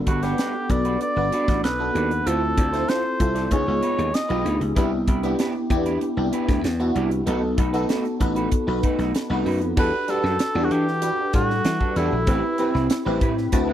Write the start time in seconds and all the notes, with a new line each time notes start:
Already playing: B3 D4 F#4 A4
0.06 G1 G3 D4 F#4 B4, kick, closed hi-hat
0.22 G3 B3 D4 F#4 G4 B4 F#5, snare, closed hi-hat
0.38 G3 D4 F#4 B4, snare, closed hi-hat
0.54 muted clean electric guitar stroke
0.69 B1 B3 D4 F#4 B4 D5, muted clean electric guitar stroke, kick, closed hi-hat
0.85 G3 D4 F#4 B4, closed hi-hat
1.01 D5, muted clean electric guitar stroke, closed hi-hat
1.16 G1 B3 D4 F#4 B4, muted clean electric guitar stroke
1.32 G3 D4 F#4 B4, closed hi-hat
1.47 A1 G3 D4 F#4 B4, kick, snare, closed hi-hat
1.63 B1 B4, snare, closed hi-hat
1.79 B3 D4 F#4 A4, muted clean electric guitar stroke
1.94 D#2 G3 D4 F#4 D5, closed hi-hat
2.11 muted clean electric guitar stroke, closed hi-hat
2.26 D2 C4 E4 F4 A4 C5, closed hi-hat
2.42 muted clean electric guitar stroke
2.57 D2 C4 F4 A4 D5, kick, closed hi-hat
2.72 C4 E4 F4 A4 C5, snare, closed hi-hat
2.88 C4 F4 A4 C5, snare, closed hi-hat
3.04 muted clean electric guitar stroke
3.19 C2 C4 E4 F4 A4, muted clean electric guitar stroke, kick, closed hi-hat
3.35 C4 F4 A4 D5, snare, closed hi-hat
3.46 C5
3.50 C#2 B3 D#4 F4 G#4 C#5, muted clean electric guitar stroke, kick, closed hi-hat
3.66 C#2 B3 D#4 F4 G#4, muted clean electric guitar stroke
3.81 G#3 D#4 F4 B4, closed hi-hat
3.97 D#2 G#3 D#4 F4 B4, closed hi-hat
4.13 D#5, muted clean electric guitar stroke, snare, closed hi-hat
4.29 B1 G#3 B3 D#4 F4 G4 B4, closed hi-hat
4.44 D2 G#3 D#4 F4 B4, closed hi-hat
4.60 C#2, muted clean electric guitar stroke, closed hi-hat
4.75 C2 B3 D4 E4 G4 B4, kick, closed hi-hat
4.92 muted clean electric guitar stroke
5.07 C2 B3 E4 G4 B4, kick, closed hi-hat
5.23 B3 D4 E4 G4 B4, closed hi-hat
5.39 B3 E4 G4 B4, snare, closed hi-hat
5.54 muted clean electric guitar stroke
5.70 E2 B3 D4 E4 G4, muted clean electric guitar stroke, kick, closed hi-hat
5.86 B3 E4 G4 B4, closed hi-hat
6.01 muted clean electric guitar stroke, closed hi-hat
6.17 C2 B3 D4 E4 G4, muted clean electric guitar stroke
6.32 B3 E4 G4 B4, closed hi-hat
6.48 D2 B3 E4 G4 B4, kick, snare, closed hi-hat
6.64 E2, snare, closed hi-hat
6.79 B3 D4 E4 F#4, muted clean electric guitar stroke, closed hi-hat
6.95 C2 B3 E4 G4 D5, closed hi-hat
7.11 muted clean electric guitar stroke, closed hi-hat
7.26 B1 A3 B3 D#4 F#4 A4 B4, closed hi-hat
7.42 muted clean electric guitar stroke
7.57 B1 A3 D#4 F#4 B4, kick, closed hi-hat
7.73 A3 B3 D#4 F#4 A4 B4, closed hi-hat
7.89 A3 D#4 F#4 B4, snare, closed hi-hat
8.05 muted clean electric guitar stroke, closed hi-hat
8.20 A1 B3 D#4 F#4 B4, muted clean electric guitar stroke, kick, closed hi-hat
8.36 A3 D#4 F#4 B4, closed hi-hat
8.52 muted clean electric guitar stroke, kick, closed hi-hat
8.67 B1 B3 D#4 F#4 B4, muted clean electric guitar stroke
8.83 A3 D#4 F#4 B4, kick, closed hi-hat
8.98 B1 A3 D#4 F#4 B4, snare, closed hi-hat
9.14 muted clean electric guitar stroke, snare, closed hi-hat
9.29 C2 A3 B3 D#4 F#4 B4
9.46 F#2 A3 D#4 F#4 B4, open hi-hat
9.61 F2, closed hi-hat
9.77 E2 G3 D4 F#4 G4 A4 B4, kick, crash
9.93 muted clean electric guitar stroke
10.08 G3 D4 F#4 G4 A4 B4, closed hi-hat
10.24 F#2 G3 D4 F#4 A4, snare
10.39 muted clean electric guitar stroke, snare, closed hi-hat
10.55 E2 G3 D4 F#4 G4 A4
10.65 F#4
10.71 E3 G3 D4 F#4 G4 A4, closed hi-hat
10.87 muted clean electric guitar stroke, snare
11.02 D4 F#4 G4 B4, muted clean electric guitar stroke, closed hi-hat
11.18 muted clean electric guitar stroke
11.33 A2 G3 D4 F#4 A4, kick, closed hi-hat
11.49 muted clean electric guitar stroke, snare
11.64 E3, muted clean electric guitar stroke, snare, closed hi-hat
11.80 G3 D4 F#4 A4, kick
11.96 E2 G3 D4 E4 F#4 G4 A4, closed hi-hat
12.12 A#1, muted clean electric guitar stroke
12.27 A1 G3 C4 E4 G4 B4, kick, closed hi-hat
12.43 muted clean electric guitar stroke
12.58 G3 C4 E4 G4 B4, closed hi-hat
12.74 C2 G3 C4 E4 B4, snare
12.90 muted clean electric guitar stroke, snare, closed hi-hat
13.05 A1 G3 C4 E4 G4 B4
13.21 A2 G3 C4 E4 B4 B5, kick, closed hi-hat
13.36 muted clean electric guitar stroke, snare
13.52 D2 C4 E4 F#4 B4 A5, muted clean electric guitar stroke, kick, closed hi-hat
13.68 F#3 C4 E4 B4 F#5